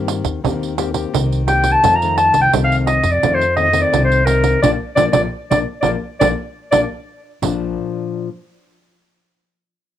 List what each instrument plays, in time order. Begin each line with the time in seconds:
Already playing: upright bass G2, nylon-string guitar D#3 A#3 C4 G4
0.08 pandeiro
0.24 upright bass D#2, pandeiro
0.44 upright bass D#2, nylon-string guitar D#3 A#3 C4 G4, pandeiro
0.63 pandeiro
0.78 nylon-string guitar A#3 C4 G4, pandeiro
0.94 nylon-string guitar A#3 C4 G4, pandeiro
1.13 upright bass C2, nylon-string guitar D#3, pandeiro
1.32 pandeiro
1.47 nylon-string guitar A#3 C4 G4, clarinet G5, pandeiro
1.64 pandeiro
1.72 clarinet A5
1.83 upright bass F2, nylon-string guitar F2 D#3 A3 C4, pandeiro
1.95 clarinet A#5
2.02 nylon-string guitar D#3 A3 C4, pandeiro
2.17 clarinet A5, pandeiro
2.34 upright bass C2, pandeiro
2.41 clarinet G5
2.53 upright bass C2, nylon-string guitar C3 D#3 A3 C4, pandeiro
2.64 clarinet F5
2.72 pandeiro
2.86 clarinet D#5, pandeiro
3.03 upright bass F2, pandeiro
3.11 clarinet D5
3.23 nylon-string guitar F2 D#3 A3 C4, upright bass F2, pandeiro
3.34 clarinet C5
3.41 pandeiro
3.56 nylon-string guitar D#3 A3 C4, clarinet D#5, pandeiro
3.72 nylon-string guitar D#3 A3 C4, pandeiro
3.82 clarinet D5
3.92 upright bass C2, nylon-string guitar C3, pandeiro
4.04 clarinet C5
4.12 pandeiro
4.25 nylon-string guitar D#3 C4, clarinet A#4, pandeiro
4.44 pandeiro
4.62 upright bass A#1, nylon-string guitar F3 A#3 D4, clarinet D5, pandeiro
4.95 upright bass A#1, nylon-string guitar F3 A#3 D4, clarinet D5, pandeiro
5.12 upright bass A#1, nylon-string guitar F3 A#3 D4, clarinet D5, pandeiro
5.51 upright bass A#1, nylon-string guitar F3 A#3 D4, clarinet D5, pandeiro
5.81 upright bass A#1, nylon-string guitar F3 A#3 D4, clarinet D5, pandeiro
6.20 upright bass A#1, nylon-string guitar F3 A#3 D4, clarinet D5, pandeiro
6.71 upright bass A#1, nylon-string guitar F3 A#3 D4, clarinet D5, pandeiro
7.42 upright bass A#1, nylon-string guitar A#2 F3 A#3 D4, pandeiro